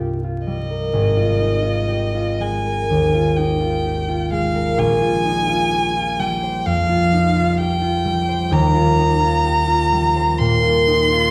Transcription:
Already playing: harp C2 G2 G3 F4 A#4
0.00 harp G4
0.24 harp F4
0.47 harp G3, violin D#5
0.70 harp A#4
0.93 harp G#1
1.17 harp F4
1.40 harp D#4
1.62 harp F4
1.88 harp G4
2.15 harp F4
2.40 harp G#3, violin G#5
2.66 harp A#4
2.90 harp D#2
3.14 harp F4
3.36 harp D#4, violin G5
3.60 harp F4
3.84 harp G4
4.08 harp F4
4.31 harp G#3, violin F5
4.54 harp A#4
4.78 harp A#1, violin G#5
5.01 harp F4
5.25 harp D#4
5.49 harp F4
5.72 harp G4
5.97 harp F4
6.19 harp G3, violin G5
6.43 harp C5
6.65 harp F2, violin F5
6.89 harp F4
7.13 harp D#4
7.36 harp F4
7.58 harp G4, violin G5
7.82 harp F4
8.05 harp G3
8.28 harp C5
8.51 harp D#2, violin A#5
8.74 harp F4
8.98 harp D#4
9.20 harp F4
9.45 harp G4
9.67 harp F4
9.92 harp G3
10.16 harp C5
10.38 harp A#2, violin C6
10.62 harp F4
10.87 harp D#4
11.13 harp F4

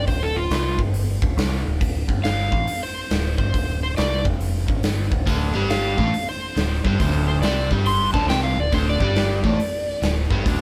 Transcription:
0.07 picked electric bass D1, electric slide guitar C5, kick, open hi-hat
0.23 electric slide guitar A4
0.36 electric slide guitar F4
0.51 picked electric bass C2, snare, open hi-hat
0.78 picked electric bass G1, kick
0.94 open hi-hat
1.22 picked electric bass D1, kick
1.37 picked electric bass C2, snare, open hi-hat
1.66 picked electric bass D1
1.81 picked electric bass D1, kick, open hi-hat
2.08 picked electric bass G1, kick
2.24 electric slide guitar F5, snare, open hi-hat
2.52 picked electric bass A1, kick
2.68 open hi-hat
2.83 electric slide guitar C5
3.10 picked electric bass D1, snare, open hi-hat
3.38 picked electric bass G1, electric slide guitar C5, kick
3.54 picked electric bass D1, kick, open hi-hat
3.83 electric slide guitar C5
3.97 picked electric bass C2, electric slide guitar D5, snare, open hi-hat
4.25 picked electric bass F1, kick
4.41 open hi-hat
4.68 picked electric bass G#1, kick
4.83 picked electric bass G1, snare, open hi-hat
5.11 picked electric bass D1, kick
5.26 picked electric bass D1, overdriven electric guitar D2 D3, kick, open hi-hat
5.54 picked electric bass G1, overdriven electric guitar G2 G3
5.70 electric slide guitar F5, snare, open hi-hat
5.97 picked electric bass A1, overdriven electric guitar A2 A3, kick
6.14 open hi-hat
6.29 electric slide guitar C5
6.56 picked electric bass D1, overdriven electric guitar D2, snare, open hi-hat
6.84 picked electric bass G1, overdriven electric guitar G2 G3, electric slide guitar C5, kick
6.99 picked electric bass D1, overdriven electric guitar D2 D3, kick, open hi-hat
7.28 electric slide guitar C5
7.42 picked electric bass C2, overdriven electric guitar C3 C4, electric slide guitar D5, snare, open hi-hat
7.70 picked electric bass G1, overdriven electric guitar G2 G3, kick
7.86 electric slide guitar C6, open hi-hat
8.13 picked electric bass D1, overdriven electric guitar D2 D3, electric slide guitar A5, kick
8.28 picked electric bass C2, overdriven electric guitar C3 C4, electric slide guitar G5, snare, open hi-hat
8.44 electric slide guitar F5
8.56 picked electric bass D1, overdriven electric guitar D2, electric slide guitar D5
8.72 picked electric bass D1, overdriven electric guitar D2 D3, electric slide guitar C5, kick, open hi-hat
8.89 electric slide guitar D5
9.00 picked electric bass G1, overdriven electric guitar G2 G3, kick
9.16 snare, open hi-hat
9.43 picked electric bass A1, overdriven electric guitar A2 A3, kick
9.60 open hi-hat
10.02 picked electric bass D1, overdriven electric guitar D2, snare, open hi-hat
10.30 picked electric bass G1, overdriven electric guitar G2 G3, kick
10.46 picked electric bass D1, overdriven electric guitar D2 D3, kick, open hi-hat

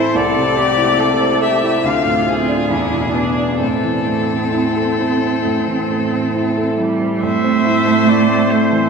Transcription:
Already playing: grand piano A2 E3 C4 E4 A4 C5, viola C4, cello E4, violin C5
0.15 grand piano C2, viola A3, cello A4, violin D5
0.36 grand piano C3
0.56 grand piano C4, cello G4
0.78 grand piano E4
0.99 grand piano A4, cello A4
1.20 grand piano C5
1.42 cello G4, grand piano A4, violin E5
1.63 grand piano E4
1.84 grand piano D2, viola C4, cello F4, violin F5
2.05 grand piano A2
2.26 grand piano C4, violin G#4
2.48 grand piano D4
2.70 grand piano E2, viola D4, cello E4
2.93 grand piano B2
3.14 grand piano B3, cello D4
3.37 grand piano D4
3.60 grand piano A2, cello C4, viola C4, violin A4
3.84 grand piano E3
4.07 grand piano A3
4.29 grand piano C4
4.53 grand piano E4
4.76 grand piano A4
4.99 grand piano E4
5.22 grand piano C4
5.45 grand piano A2
5.67 grand piano E3
5.90 grand piano A3
6.12 grand piano C4
6.35 grand piano E4
6.57 grand piano A4
6.78 cello G3, grand piano E4
7.01 grand piano C4
7.23 grand piano A2, cello A3, violin C5, viola E5
7.44 grand piano C4
7.65 grand piano E4
7.86 grand piano A3
8.07 grand piano E4, viola D5
8.29 grand piano C4
8.51 grand piano A3, viola C5
8.72 grand piano E3

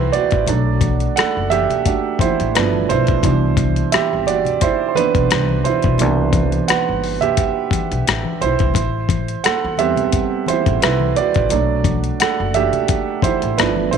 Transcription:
Already playing: grand piano G3 A3 C4 E4 G4 A4 B4 C5 E5 F#5 G5
0.12 grand piano F#4 D5, closed hi-hat, low conga
0.31 upright bass A1, kick, closed hi-hat
0.47 upright bass B1, grand piano F#3 A3 D4, closed hi-hat, muted conga, low conga
0.81 kick, closed hi-hat, high conga
1.00 closed hi-hat
1.16 grand piano A4 F#5, cross-stick, closed hi-hat, muted conga
1.37 upright bass F#1
1.50 grand piano G4 E5, closed hi-hat, muted conga, high conga
1.70 closed hi-hat, low conga
1.86 grand piano A3 D4 F#4, kick, closed hi-hat
2.19 grand piano E4 C5, muted upright bass stroke, kick, closed hi-hat, muted conga, high conga
2.40 upright bass A1, closed hi-hat
2.55 upright bass G1, grand piano B2 F3 A3 D4 E4 B4, cross-stick, closed hi-hat
2.73 high conga
2.89 upright bass B1, grand piano E4 C5, closed hi-hat, low conga
3.07 kick, closed hi-hat
3.23 upright bass C2, grand piano B2 E3 D4, kick, closed hi-hat, low conga
3.57 kick, closed hi-hat, high conga
3.76 closed hi-hat
3.92 grand piano G4 E5, muted upright bass stroke, cross-stick, closed hi-hat, muted conga
4.13 upright bass G1
4.26 grand piano F#4 D5, closed hi-hat, muted conga, high conga
4.45 closed hi-hat, low conga
4.61 grand piano E4 C5, kick, closed hi-hat, muted conga
4.89 grand piano C5
4.95 grand piano E3 B3 D4 B4, muted upright bass stroke, closed hi-hat, high conga
5.15 upright bass B1, kick, closed hi-hat
5.29 upright bass C2, cross-stick, closed hi-hat, muted conga
5.49 high conga
5.64 grand piano E4 C5, closed hi-hat, muted conga, low conga
5.82 upright bass B1, kick, closed hi-hat
5.98 upright bass C2, grand piano B2 E3 D4, closed hi-hat, muted conga, low conga
6.33 kick, closed hi-hat, muted conga, high conga
6.52 closed hi-hat
6.68 grand piano B4 F#5, muted upright bass stroke, cross-stick, closed hi-hat, muted conga
6.89 upright bass G1
7.04 open hi-hat
7.21 grand piano G4 E5, closed hi-hat, low conga
7.37 kick, closed hi-hat, muted conga
7.71 muted upright bass stroke, kick, closed hi-hat, high conga
7.92 upright bass B1, closed hi-hat
8.07 upright bass A1, cross-stick, closed hi-hat
8.25 high conga
8.41 upright bass B1, grand piano E4 C5, closed hi-hat, muted conga, low conga
8.59 upright bass C2, kick, closed hi-hat
8.74 upright bass A1, kick, closed hi-hat, muted conga, low conga
9.09 kick, closed hi-hat, muted conga, high conga
9.28 closed hi-hat
9.44 grand piano A4 F#5, muted upright bass stroke, cross-stick, closed hi-hat
9.64 upright bass E2
9.77 grand piano G3 B3 C4 G4 E5, closed hi-hat, muted conga, high conga
9.96 closed hi-hat, low conga
10.12 kick, closed hi-hat
10.46 grand piano E4 C5, muted upright bass stroke, closed hi-hat, high conga
10.66 upright bass A1, kick, closed hi-hat
10.80 upright bass C2, grand piano E4 B4, cross-stick, closed hi-hat, muted conga
11.00 high conga
11.16 grand piano F#4 D5, closed hi-hat, low conga
11.34 upright bass A1, kick, closed hi-hat
11.49 upright bass B1, grand piano F#3 A3 D4, closed hi-hat, muted conga, low conga
11.84 kick, closed hi-hat, high conga
12.04 closed hi-hat
12.20 grand piano A4 F#5, muted upright bass stroke, cross-stick, closed hi-hat, muted conga
12.40 upright bass F#1
12.54 grand piano A3 D4 F#4 G4 E5, closed hi-hat, high conga
12.72 closed hi-hat, low conga
12.88 kick, closed hi-hat, muted conga
13.22 grand piano E4 C5, muted upright bass stroke, kick, closed hi-hat, high conga
13.42 upright bass A1, closed hi-hat
13.57 upright bass G1, grand piano F3 A3 B3 D4 E4 B4, cross-stick, closed hi-hat, muted conga
13.76 high conga
13.91 upright bass B1, grand piano E4 C5, closed hi-hat, low conga

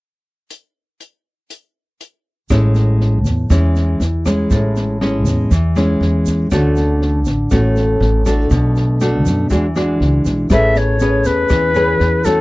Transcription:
0.51 closed hi-hat
1.00 closed hi-hat
1.50 closed hi-hat
2.01 closed hi-hat
2.50 upright bass A1, nylon-string guitar A2 G#3 C#4 E4, kick, cross-stick, snare, shaker
2.75 snare, shaker
3.00 snare
3.25 upright bass E2, kick, snare, shaker
3.50 upright bass E2, nylon-string guitar E3 G#3 C#4 E4, kick, cross-stick, snare, shaker
3.76 snare, shaker
4.00 upright bass E2, snare, shaker
4.26 nylon-string guitar G#3 C#4 E4, kick, cross-stick, snare, shaker
4.51 upright bass A1, nylon-string guitar A2, kick, snare, shaker
4.76 snare, shaker
5.01 nylon-string guitar G#3 C#4 E4, cross-stick, snare
5.26 upright bass E2, kick, snare, shaker
5.51 upright bass E2, nylon-string guitar E3, kick, snare, shaker
5.76 nylon-string guitar G#3 C#4 E4, cross-stick, snare, shaker
6.00 upright bass E2, snare
6.26 kick, snare, shaker
6.51 upright bass D2, nylon-string guitar D3 A3 C#4 F#4, kick, cross-stick, snare, shaker
6.76 snare, shaker
7.01 snare
7.25 upright bass A1, kick, snare, shaker
7.50 upright bass A1, nylon-string guitar A2 A3 C#4 F#4, kick, cross-stick, snare, shaker
7.76 snare, shaker
8.00 upright bass A1, snare
8.26 nylon-string guitar A3 D4 F#4, kick, cross-stick, snare, shaker
8.51 upright bass B1, nylon-string guitar B2, kick, snare, shaker
8.76 snare, shaker
9.01 nylon-string guitar A3 D4 F#4, cross-stick, snare, shaker
9.26 upright bass F#2, kick, snare, shaker
9.50 upright bass E2, nylon-string guitar E3 G#3 D4 F#4, kick, snare, shaker
9.75 nylon-string guitar G#3 D4 F#4, cross-stick, snare, shaker
10.00 upright bass C#2, snare
10.25 upright bass B1, kick, snare, shaker
10.50 upright bass A1, nylon-string guitar A3 C#4 G#4 B4, flute E5, kick, cross-stick, snare, shaker
10.75 flute C#5, snare, shaker
11.00 nylon-string guitar C#4 G#4 B4, snare, shaker
11.25 upright bass E2, flute B4, kick, snare, shaker
11.49 upright bass E2, nylon-string guitar E3, kick, cross-stick, snare, shaker
11.75 nylon-string guitar C#4 G#4 B4, snare, shaker
12.00 upright bass E2, snare
12.24 nylon-string guitar A3 C#4 F#4, flute A4, kick, cross-stick, snare, shaker

